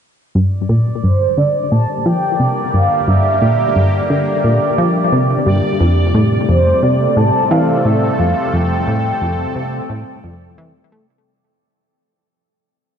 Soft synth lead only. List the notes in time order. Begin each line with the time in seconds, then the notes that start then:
1.04 C5
1.38 D5
1.72 A5
2.05 G5
2.74 F5
3.08 E5
4.10 D5
6.49 C5
6.83 D5
7.17 A5
7.51 F5
7.85 E5
8.19 F5
8.54 G5